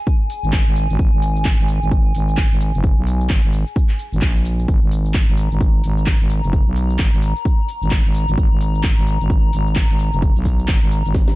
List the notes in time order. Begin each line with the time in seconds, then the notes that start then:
Already playing: G#5
0.07 kick, cabasa
0.30 open hi-hat, cabasa
0.43 G#1, cabasa
0.53 kick, clap, cabasa
0.66 G#1, cabasa
0.76 open hi-hat, cabasa
0.89 G#1, cabasa
0.99 kick, cabasa
1.13 G#1
1.22 open hi-hat, cabasa
1.36 cabasa
1.45 kick, clap, cabasa
1.59 G#1, cabasa
1.68 open hi-hat, cabasa
1.82 G#1, cabasa
1.91 kick, cabasa
2.15 G#1, open hi-hat, cabasa
2.28 cabasa
2.37 kick, clap, cabasa
2.51 G#1, cabasa
2.61 open hi-hat, cabasa
2.74 F#1, cabasa
2.84 kick, cabasa
2.97 B1
3.07 open hi-hat, cabasa
3.21 cabasa
3.30 G#1, kick, clap, cabasa
3.43 G#1, cabasa
3.53 open hi-hat, cabasa
3.67 cabasa
3.76 kick, cabasa
3.89 clap
3.99 open hi-hat, cabasa
4.13 G#1, cabasa
4.22 A#1, kick, clap, cabasa
4.36 cabasa
4.45 open hi-hat, cabasa
4.59 A#5, cabasa
4.68 G#1, kick, cabasa
4.82 G#1
4.91 open hi-hat, cabasa
5.05 cabasa
5.14 kick, clap, cabasa
5.28 G#1, cabasa
5.38 open hi-hat, cabasa
5.51 G#1, cabasa
5.61 kick, cabasa
5.84 G#1, open hi-hat, cabasa
5.97 cabasa
6.06 kick, clap, cabasa
6.20 G#1, cabasa
6.30 open hi-hat, cabasa
6.43 F#1, cabasa
6.53 kick, cabasa
6.66 B1
6.76 open hi-hat, cabasa
6.90 cabasa
6.99 G#1, kick, clap, cabasa
7.13 G#1, cabasa
7.22 open hi-hat, cabasa
7.36 cabasa
7.45 kick, cabasa
7.68 open hi-hat, cabasa
7.82 G#1, cabasa
7.91 kick, clap, cabasa
8.05 G#1, cabasa
8.15 open hi-hat, cabasa
8.28 G#1, cabasa
8.38 G#1, kick, cabasa
8.51 G#1
8.61 open hi-hat, cabasa
8.75 cabasa
8.83 kick, clap, cabasa
8.97 G#1, cabasa
9.07 open hi-hat, cabasa
9.20 G#1, cabasa
9.30 kick, cabasa
9.53 G#1, open hi-hat, cabasa
9.67 cabasa
9.76 kick, clap, cabasa
9.89 G#1, cabasa
9.99 open hi-hat, cabasa
10.12 F#1, cabasa
10.22 kick, cabasa
10.36 B1, cabasa
10.45 kick, open hi-hat, cabasa
10.59 cabasa
10.68 G#1, kick, clap, cabasa
10.82 G#1, cabasa
10.91 open hi-hat, cabasa
11.05 G#1, cabasa
11.14 kick, snare, cabasa
11.28 snare, cabasa